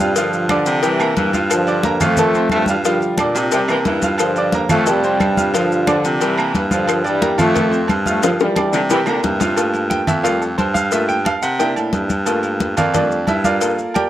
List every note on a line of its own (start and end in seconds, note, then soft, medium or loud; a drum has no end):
0.00 0.61 G2 medium
0.00 0.13 C3 medium
0.00 0.13 G3 loud
0.00 0.14 F4 medium
0.00 0.14 F5 medium
0.00 0.14 F6 medium
0.16 0.84 D3 medium
0.16 0.84 F3 medium
0.16 0.44 F3 medium
0.16 0.44 F4 medium
0.16 0.45 F5 medium
0.16 cowbell loud
0.16 high conga soft
0.16 low agogo medium
0.16 maracas loud
0.33 high conga soft
0.33 maracas soft
0.49 0.81 D3 loud
0.49 0.77 D4 medium
0.49 0.78 D5 medium
0.49 0.78 D6 medium
0.49 cowbell medium
0.49 high conga loud
0.49 low agogo loud
0.49 claves medium
0.49 maracas soft
0.66 1.13 C3 loud
0.66 cowbell medium
0.66 high conga soft
0.66 maracas medium
0.82 1.15 E3 loud
0.82 0.97 G3 medium
0.82 0.97 G4 medium
0.82 0.97 G5 medium
0.82 cowbell loud
0.82 high conga soft
0.82 low agogo medium
0.82 maracas loud
0.99 1.28 A#3 medium
0.99 1.28 A#4 medium
0.99 1.28 A#5 medium
0.99 high conga soft
0.99 low agogo loud
0.99 claves medium
0.99 maracas soft
1.16 1.95 G2 loud
1.16 1.40 E3 medium
1.16 cowbell medium
1.16 high conga medium
1.16 low timbale medium
1.16 maracas soft
1.33 1.62 F4 medium
1.33 1.62 F5 medium
1.33 1.62 F6 medium
1.33 high conga medium
1.33 low agogo medium
1.33 maracas medium
1.50 1.98 D3 medium
1.50 1.98 F3 loud
1.50 cowbell loud
1.50 low agogo loud
1.50 claves medium
1.50 maracas loud
1.67 1.81 D4 medium
1.67 1.81 D5 medium
1.67 1.82 D6 medium
1.67 high conga soft
1.67 low agogo medium
1.67 maracas soft
1.83 1.98 A#3 medium
1.83 1.98 A#4 medium
1.83 1.99 A#5 medium
1.83 cowbell medium
1.83 high conga loud
1.83 maracas soft
2.00 2.47 F2 loud
2.00 2.15 F3 medium
2.00 2.51 F3 medium
2.00 2.50 A3 loud
2.00 2.15 F4 medium
2.00 2.15 F5 loud
2.00 cowbell medium
2.00 high conga soft
2.00 low conga medium
2.00 low agogo loud
2.00 claves medium
2.00 maracas medium
2.17 2.32 A3 medium
2.17 2.32 A4 medium
2.17 2.32 A5 medium
2.17 cowbell loud
2.17 high conga soft
2.17 low conga medium
2.17 low agogo medium
2.17 maracas loud
2.33 2.62 C4 medium
2.33 2.63 C5 medium
2.33 2.63 C6 medium
2.33 high conga soft
2.33 maracas soft
2.50 3.02 G2 medium
2.50 2.68 F3 medium
2.50 2.67 A3 loud
2.50 cowbell medium
2.50 high conga medium
2.50 low timbale medium
2.50 low agogo loud
2.50 claves medium
2.50 maracas soft
2.66 2.76 E3 medium
2.66 2.76 G3 medium
2.66 2.83 F4 medium
2.66 2.83 F5 medium
2.66 high conga medium
2.66 maracas medium
2.70 2.83 F6 medium
2.84 3.32 D3 medium
2.84 3.13 F3 medium
2.84 3.32 G3 medium
2.84 3.13 F4 medium
2.84 3.13 F5 loud
2.84 cowbell loud
2.84 high conga soft
2.84 low agogo medium
2.84 maracas loud
3.01 high conga soft
3.01 maracas soft
3.18 3.50 A#2 medium
3.18 3.47 D4 medium
3.18 3.47 D5 medium
3.18 3.47 D6 medium
3.18 cowbell medium
3.18 high conga loud
3.18 low agogo loud
3.18 claves medium
3.18 maracas soft
3.35 3.82 C3 medium
3.35 cowbell medium
3.35 high conga soft
3.35 high timbale loud
3.35 maracas medium
3.51 3.60 C3 loud
3.51 3.67 G3 medium
3.51 3.67 G4 medium
3.51 3.67 G5 medium
3.51 cowbell loud
3.51 high conga soft
3.51 high timbale medium
3.51 low agogo medium
3.51 maracas medium
3.68 3.77 E3 loud
3.68 3.97 A#3 medium
3.68 3.97 A#4 medium
3.68 3.97 A#5 medium
3.68 high conga soft
3.68 low timbale medium
3.68 low agogo loud
3.68 claves medium
3.68 maracas soft
3.85 4.64 G2 medium
3.85 4.09 E3 medium
3.85 cowbell medium
3.85 high conga medium
3.85 low timbale medium
3.85 maracas soft
4.02 4.31 F4 medium
4.02 4.31 F5 medium
4.02 4.31 F6 medium
4.02 high conga medium
4.02 low timbale medium
4.02 low agogo medium
4.02 maracas medium
4.18 4.67 D3 medium
4.18 4.67 F3 medium
4.18 cowbell loud
4.18 high conga soft
4.18 low agogo loud
4.18 claves medium
4.18 maracas medium
4.36 4.51 D4 medium
4.36 4.51 D5 medium
4.36 4.51 D6 medium
4.36 high conga soft
4.36 low agogo medium
4.36 maracas soft
4.52 4.68 A#3 medium
4.52 4.68 A#4 medium
4.52 4.68 A#5 medium
4.52 cowbell medium
4.52 high conga loud
4.52 maracas soft
4.69 5.17 F2 loud
4.69 4.84 F3 medium
4.69 4.87 F3 medium
4.69 4.87 A3 loud
4.69 4.84 F4 medium
4.69 4.85 F5 medium
4.69 cowbell medium
4.69 high conga soft
4.69 low conga medium
4.69 low agogo loud
4.69 claves medium
4.69 maracas medium
4.86 5.55 C3 medium
4.86 5.55 G3 loud
4.86 5.01 A3 medium
4.86 5.01 A4 medium
4.86 5.01 A5 medium
4.86 cowbell loud
4.86 high conga soft
4.86 low agogo medium
4.86 maracas medium
5.03 5.31 C4 medium
5.03 5.32 C5 medium
5.03 5.32 C6 medium
5.03 high conga soft
5.03 maracas soft
5.20 5.99 G2 medium
5.20 cowbell medium
5.20 high conga medium
5.20 low timbale medium
5.20 low agogo loud
5.20 claves medium
5.20 maracas soft
5.37 5.51 F4 medium
5.37 5.51 F5 medium
5.37 5.51 F6 medium
5.37 high conga medium
5.37 maracas medium
5.54 6.22 D3 medium
5.54 5.82 F3 medium
5.54 6.22 F3 medium
5.54 5.82 F4 medium
5.54 5.82 F5 medium
5.54 cowbell loud
5.54 high conga soft
5.54 low agogo medium
5.54 maracas medium
5.71 high conga soft
5.71 maracas soft
5.87 6.19 D3 loud
5.87 6.15 D4 medium
5.87 6.15 D5 medium
5.87 6.16 D6 medium
5.87 cowbell medium
5.87 high conga medium
5.87 low agogo loud
5.87 claves medium
5.87 maracas soft
6.04 6.51 C3 loud
6.04 cowbell medium
6.04 high conga soft
6.04 maracas medium
6.20 6.63 E3 loud
6.20 6.35 G3 medium
6.20 6.35 G4 medium
6.20 6.35 G5 medium
6.20 cowbell loud
6.20 high conga soft
6.20 low agogo medium
6.20 maracas loud
6.37 6.65 A#3 medium
6.37 6.65 A#4 medium
6.37 6.66 A#5 medium
6.37 high conga soft
6.37 low agogo loud
6.37 claves medium
6.37 maracas soft
6.55 7.33 G2 loud
6.55 cowbell medium
6.55 high conga medium
6.55 maracas soft
6.71 7.04 D3 medium
6.71 7.03 F3 medium
6.71 6.99 F4 medium
6.71 6.99 F5 medium
6.71 6.99 F6 medium
6.71 high conga medium
6.71 low agogo medium
6.71 maracas medium
6.87 cowbell loud
6.87 high conga soft
6.87 low agogo loud
6.87 claves medium
6.87 maracas loud
7.04 7.37 E3 medium
7.04 7.37 G3 loud
7.04 7.18 D4 medium
7.04 7.19 D5 medium
7.04 7.19 D6 medium
7.04 high conga soft
7.04 low agogo medium
7.04 maracas soft
7.21 7.35 A#3 medium
7.21 7.36 A#4 medium
7.21 7.36 A#5 medium
7.21 cowbell medium
7.21 high conga loud
7.21 maracas soft
7.38 7.86 F2 loud
7.38 7.52 F3 loud
7.38 7.87 F3 medium
7.38 7.86 A3 loud
7.38 7.52 F4 medium
7.38 7.52 F5 medium
7.38 cowbell medium
7.38 high conga soft
7.38 low conga medium
7.38 low agogo loud
7.38 claves medium
7.38 maracas medium
7.55 7.69 A3 medium
7.55 7.69 A4 medium
7.55 7.69 A5 medium
7.55 cowbell loud
7.55 high conga soft
7.55 low conga medium
7.55 low agogo medium
7.55 maracas medium
7.71 7.99 C4 medium
7.71 8.00 C5 medium
7.71 8.00 C6 medium
7.71 high conga soft
7.71 maracas soft
7.88 8.41 G2 medium
7.88 cowbell medium
7.88 high conga medium
7.88 low timbale medium
7.88 low agogo loud
7.88 claves medium
7.88 maracas soft
8.06 8.23 F3 medium
8.06 8.22 A3 loud
8.06 8.20 F4 medium
8.06 8.20 F5 medium
8.06 8.20 F6 medium
8.06 high conga medium
8.06 maracas medium
8.22 8.32 D3 medium
8.22 8.50 F3 medium
8.22 8.31 F3 medium
8.22 8.51 F4 medium
8.22 8.51 F5 medium
8.22 cowbell loud
8.22 high bongo medium
8.22 high conga soft
8.22 low agogo medium
8.22 maracas loud
8.40 9.04 E3 medium
8.40 9.04 G3 medium
8.40 high bongo loud
8.40 high conga soft
8.40 maracas soft
8.56 8.84 D4 medium
8.56 8.84 D5 medium
8.56 8.85 D6 medium
8.56 cowbell medium
8.56 high bongo medium
8.56 high conga medium
8.56 low agogo loud
8.56 claves medium
8.56 maracas soft
8.73 9.20 C3 loud
8.73 8.80 D3 loud
8.73 cowbell medium
8.73 low bongo medium
8.73 high conga soft
8.73 maracas medium
8.90 8.98 E3 loud
8.90 9.04 G3 medium
8.90 9.04 G4 medium
8.90 9.05 G5 medium
8.90 cowbell loud
8.90 low bongo medium
8.90 high conga soft
8.90 low agogo medium
8.90 maracas medium
9.06 9.23 D3 loud
9.06 9.35 A#3 medium
9.06 9.35 A#4 medium
9.06 9.35 A#5 medium
9.06 low bongo medium
9.06 high conga soft
9.06 high timbale loud
9.06 low agogo loud
9.06 claves medium
9.06 maracas soft
9.23 10.02 G2 loud
9.23 9.58 C3 medium
9.23 cowbell medium
9.23 low bongo medium
9.23 high conga medium
9.23 low timbale medium
9.23 maracas soft
9.40 9.54 F4 medium
9.40 9.55 F5 medium
9.40 9.55 F6 medium
9.40 low bongo medium
9.40 high conga medium
9.40 low timbale medium
9.40 low agogo medium
9.40 maracas medium
9.56 10.21 A3 medium
9.56 10.21 A#3 medium
9.56 10.22 F4 medium
9.56 cowbell loud
9.56 high conga soft
9.56 low agogo loud
9.56 maracas medium
9.74 high conga soft
9.74 low agogo medium
9.74 maracas soft
9.90 10.07 G5 medium
9.90 cowbell medium
9.90 high conga medium
9.90 maracas soft
10.07 10.55 F2 loud
10.07 10.24 E5 medium
10.07 cowbell medium
10.07 high conga soft
10.07 low conga medium
10.07 low agogo loud
10.07 maracas medium
10.23 10.46 G3 medium
10.23 10.47 A3 medium
10.23 10.47 F4 medium
10.23 10.41 F5 medium
10.23 cowbell loud
10.23 high conga soft
10.23 low agogo medium
10.23 maracas medium
10.41 10.58 A4 medium
10.41 high conga soft
10.41 maracas soft
10.58 11.37 G2 medium
10.58 10.74 C5 medium
10.58 cowbell medium
10.58 high conga medium
10.58 low agogo loud
10.58 maracas soft
10.74 10.91 F5 loud
10.74 high conga medium
10.74 maracas medium
10.91 11.14 A3 medium
10.91 11.14 A#3 medium
10.91 11.15 F4 medium
10.91 11.09 E5 medium
10.91 cowbell loud
10.91 high conga soft
10.91 low agogo medium
10.91 maracas medium
11.09 11.25 G5 loud
11.09 high conga soft
11.09 maracas soft
11.25 11.42 F5 medium
11.25 cowbell medium
11.25 high conga loud
11.25 low agogo loud
11.25 maracas soft
11.42 11.74 C3 medium
11.42 11.59 F#5 medium
11.42 cowbell medium
11.42 high conga soft
11.42 maracas medium
11.59 12.07 A#3 medium
11.59 12.08 D4 medium
11.59 12.08 E4 medium
11.59 11.91 G5 medium
11.59 cowbell loud
11.59 high conga soft
11.59 low agogo medium
11.59 maracas medium
11.76 11.92 A2 medium
11.76 high conga soft
11.76 low agogo loud
11.76 maracas soft
11.93 12.72 G2 medium
11.93 cowbell medium
11.93 high conga medium
11.93 low timbale medium
11.93 maracas soft
12.10 high conga medium
12.10 low agogo medium
12.10 maracas medium
12.26 12.74 A3 medium
12.26 12.75 A#3 medium
12.26 12.75 F4 medium
12.26 cowbell loud
12.26 high conga soft
12.26 low agogo loud
12.26 maracas loud
12.43 high conga soft
12.43 low agogo medium
12.43 maracas soft
12.60 cowbell medium
12.60 high conga loud
12.60 maracas soft
12.77 13.24 F2 medium
12.77 12.94 F4 medium
12.77 12.94 A#4 medium
12.77 12.93 D5 medium
12.77 12.94 F5 medium
12.77 cowbell medium
12.77 high conga soft
12.77 low conga medium
12.77 low agogo loud
12.77 maracas medium
12.94 13.17 G3 medium
12.94 13.17 A3 medium
12.94 13.26 D4 medium
12.94 13.17 F4 medium
12.94 13.26 D5 medium
12.94 cowbell loud
12.94 high conga soft
12.94 low conga medium
12.94 low agogo medium
12.94 maracas medium
13.11 high conga soft
13.11 maracas soft
13.27 13.80 G2 loud
13.27 13.45 E4 medium
13.27 13.44 E5 medium
13.27 cowbell medium
13.27 high conga medium
13.27 low agogo loud
13.27 maracas soft
13.44 13.61 F4 medium
13.44 13.92 A#4 medium
13.44 13.92 D5 medium
13.44 13.92 F5 medium
13.44 high conga medium
13.44 maracas medium
13.61 14.10 A#3 medium
13.61 14.10 F4 medium
13.61 14.10 A4 medium
13.61 cowbell loud
13.61 low agogo medium
13.61 maracas medium
13.78 high conga soft
13.78 maracas soft
13.94 14.10 G4 medium
13.94 14.10 A#4 medium
13.94 14.10 D5 medium
13.94 14.10 G5 medium
13.94 cowbell medium
13.94 high conga medium
13.94 low agogo loud
13.94 maracas soft